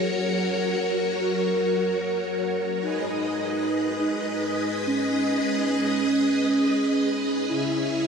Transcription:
Already playing: F#3 F#4 A#4 C#5
0.21 A#4
2.82 G#3 D#4 G#4 B4 D#5
3.99 D#4
4.87 C#4
7.48 C#3 C#4 E4 E5

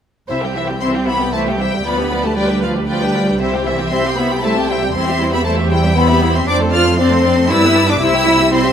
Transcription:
0.28 C2 C3 E3 E4 C5 E5
0.43 G3 C4 G4 G5
0.55 E3 E4 C5 E5
0.68 G3 C4 G4 G5
0.81 E3 C4 E4 C5 E5 C6
0.95 G3 C4 G4 G5
1.07 E3 B3 E4 C5 E5 B5
1.20 G3 C4 G4 G5
1.33 E3 A3 E4 C5 E5 A5
1.46 G3 C4 G4 G5
1.59 E3 G3 E4 C5 E5 G5
1.72 G3 C4 G4 G5
1.85 D2 F3 B3 F4 B4 D5 B5
1.98 G3 D4 G4 B4
2.11 F3 F4 B4 D5
2.23 G3 A3 D4 G4 B4 A5
2.36 F3 G3 F4 B4 D5 G5
2.48 G3 D4 G4 B4
2.62 F3 F4 B4 D5 F5
2.76 G3 D4 G4 B4
2.87 F3 G3 F4 B4 D5 G5
3.02 G3 D4 G4 B4
3.14 F3 F4 B4 D5
3.28 G3 D4 G4 B4
3.39 C2 C3 G3 E4 C5 E5
3.54 C4 G4 G5
3.65 E3 G3 E4 C5 E5
3.79 C4 G4 G5
3.91 G3 C4 E4 C5 E5 C6
4.04 C4 G4 G5
4.16 G3 B3 E4 C5 E5 B5
4.29 C4 G4 G5
4.41 G3 A3 E4 C5 E5 A5
4.55 C4 G4 G5
4.67 G3 E4 C5 E5 G5
4.82 C4 G4 G5
4.93 E2 G3 C4 E4 C5 C6
5.07 C4 G4 E5
5.21 G3 E4 C5
5.32 B3 C4 G4 E5 B5
5.45 G3 A3 E4 C5 A5
5.58 C4 G4 E5
5.69 G3 E4 C5 G5
5.83 C4 G4 E5
5.96 G3 B3 E4 C5 B5
6.09 C4 G4 E5
6.22 G3 E4 C5
6.34 C4 G4 E5 C6
6.47 F2 C4 D4 C5 D5 D6
6.60 A3 C4 A4 C5
6.72 C4 D4 F4 C5 D5 F6
6.85 A3 C4 A4 C5
6.97 C4 D4 C5 D5 C6
7.12 A3 C4 A4 C5
7.24 C4 D4 C5 D5
7.37 A3 C4 A4 C5
7.50 G2 G3 D4 E4 B4 D5 E6
7.62 B3 G4 B4
7.75 G3 D4 B4 D5
7.88 B3 D4 G4 B4 D6
8.00 C2 G3 E4 C5 E6
8.13 C4 G4 E5
8.26 G3 E4 C5
8.39 C4 G4 E5
8.52 G3 C4 E4 C5 C6
8.65 C4 G4 E5

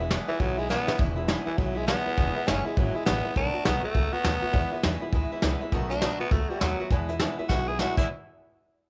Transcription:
Already playing: E1
0.00 E3 G#3 B3 E4
0.10 E2 B2 E3 G#3 B3 E4, snare
0.28 E3 G#3 B3 E4, muted upright bass stroke
0.39 B1 E3 F#3 G#3 B3 E4, kick, open hi-hat
0.58 E3 G#3 B3 E4
0.68 E2 B2 E3 G#3 B3 E4, snare
0.86 E3 G#3 B3 E4, muted upright bass stroke, snare
0.97 E1 E2 B2 E3 G#3 B3 E4, kick, open hi-hat
1.16 E3 G#3 B3 E4
1.28 E2 B2 E3 G#3 B3 E4, snare, open hi-hat
1.46 E3 G#3 B3 E4, muted upright bass stroke
1.57 B1 E3 F#3 G#3 B3 E4, kick, open hi-hat
1.75 E3 G#3 B3 E4
1.86 E2 B2 E3 G#3 B3 E4, snare
2.04 E3 G#3 B3 E4, muted upright bass stroke
2.16 E1 E2 B2 E3 G#3 B3 E4, kick, open hi-hat
2.35 E3 G#3 B3 E4, muted upright bass stroke
2.46 F#1 E2 B2 E3 G#3 B3 C#4 E4, snare
2.64 E3 G#3 B3 E4
2.76 G#1 E3 F#3 G#3 B3 E4, kick, open hi-hat
2.95 E3 G#3 B3 E4, muted upright bass stroke
3.06 A1 E2 B2 E3 G#3 B3 E4, snare
3.24 E3 G#3 B3 E4, muted upright bass stroke
3.35 B1 B2 D#3 A3 B3 D4 F#4, kick, open hi-hat
3.54 A3 B3 F#4, muted upright bass stroke
3.64 B1 B2 D#3 A3 B3 F#4, snare
3.82 A3 B3 F#4, muted upright bass stroke
3.94 C#2 D#3 A3 B3 F#4, kick, open hi-hat
4.13 A3 B3 F#4, muted upright bass stroke
4.24 D#2 B2 D#3 A3 B3 F#4, snare
4.42 A3 B3 F#4, muted upright bass stroke
4.52 E2 B2 E3 G#3 B3 E4, kick, open hi-hat
4.72 E3 G#3 B3 E4, muted upright bass stroke
4.83 E2 B2 E3 G#3 B3 E4, snare
5.01 E3 G#3 B3 E4, muted upright bass stroke
5.12 D2 E3 G#3 B3 E4, kick, open hi-hat
5.31 E3 G#3 B3 E4, muted upright bass stroke
5.42 C#2 E2 B2 E3 G#3 B3 E4, snare
5.61 E3 G#3 B3 E4, muted upright bass stroke
5.72 B1 B2 D#3 A3 B3 F#4, kick, closed hi-hat
5.90 A3 B3 D4 F#4, closed hi-hat
6.01 B2 D#3 A3 B3 F#4, snare, closed hi-hat
6.19 A3 B3 F#4, muted upright bass stroke
6.31 C#2 D#3 A3 B3 F#4, kick, closed hi-hat
6.49 G3 A3 B3 F#4
6.60 D#2 B2 D#3 F#3 A3 B3 F#4, snare, closed hi-hat
6.79 A3 B3 F#4
6.90 E2 B2 E3 G#3 B3 E4, kick, closed hi-hat
7.09 E3 G#3 B3 E4, closed hi-hat
7.20 E2 B2 E3 G#3 B3 E4, snare, closed hi-hat
7.38 E3 G#3 B3 E4, muted upright bass stroke
7.49 B1 E3 G#3 B3 E4 F#4, kick, snare
7.68 E3 G#3 B3 E4 G#4
7.79 E2 B2 E3 G#3 B3 E4 F#4, snare
7.97 E2 B2 E3 G#3 B3 E4, kick, crash

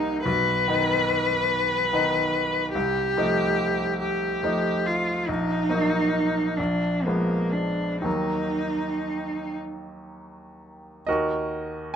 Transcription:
Already playing: C2 G3 A#3 D#4
0.24 B1 B4
0.68 D#3 B3 D#4
1.93 D#3 B3 D#4
2.73 C2 G4
3.17 F3 A3 D#4
4.01 G4
4.43 F3 A3 D#4
4.86 F4
5.28 A#1 D#4
5.69 F#3 A#3 D#4
6.57 A#1 D4
7.04 F3 G#3 A#3 B3
7.52 D4
8.02 D#2 D#3 F#3 A#3 D#4
11.07 D#2 F#4 A#4 D#5

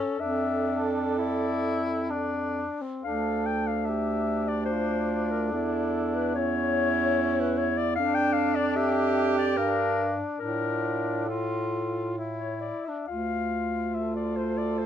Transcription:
Already playing: C#4 A4
0.19 F2 D4 A4 E5
1.18 E4 D5
2.10 D4
2.82 C4
3.02 D2 D4 A4 F5
3.46 G5
3.67 F5
3.86 G4 E5
4.48 D5
4.66 C5
4.71 F4
5.31 A#4
5.49 E2 E4 A4
6.15 B4
6.35 C#4 E4 C#5
7.40 B4
7.58 C#5
7.78 D5
7.96 F2 D4 F5
8.15 G5
8.33 F5
8.55 D5
8.76 G4 E5
9.38 D5
9.57 G2 D4 A#4
10.39 A2 D4 F4 A#4
11.26 F4 A4
12.18 E4
12.38 C#5
12.61 D5
12.85 D4 E5
13.07 D2 F4 F5
13.94 A4 E5
14.16 D5
14.36 C5
14.58 D5
14.78 C5

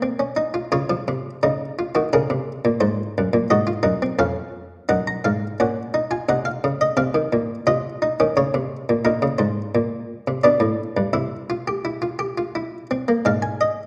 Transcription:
Already playing: G#2 G#4
0.02 C4
0.19 C#4
0.36 D#4
0.54 F4
0.72 C#3 F4 C#5
0.90 F3
1.08 C3
1.43 C#3 D#4
1.79 F4
1.95 D#3 F#4
2.13 C#3 G#4 A#4
2.30 C3
2.65 A#2
2.80 G#2 C5
3.18 F#2
3.33 A#2
3.50 G#2 F#4 D#5
3.67 F4
3.83 F#2 D#4
4.02 C4
4.19 F2 C#4 F5
4.89 F#2 D#4 F#5
5.07 A#5
5.24 G#2 F5
5.60 A#2 C#4 F#5
5.94 D#4
6.11 F4 G#5
6.29 C3 D#4 F#5
6.45 F5
6.64 C#3
6.81 D#5
6.97 C3 C4 F5
7.14 D#3
7.33 A#2
7.67 C3 F4 D#5
8.02 D#4
8.20 D#3 C#4
8.37 C#3 C#5
8.54 C3
8.89 A#2
9.05 A#2 D#4 A#4
9.22 C#3
9.38 G#2 C5
9.75 A#2
10.28 C3
10.44 B2 D4 D5
10.60 A2
10.97 G2
11.13 C3 E4 E5
11.50 F4
11.68 G4
11.85 E4
12.02 F4
12.19 G4
12.38 F4
12.55 E4
12.91 C4
13.08 A#3
13.25 G#2 G#3 F5
13.42 G#5
13.61 D#5

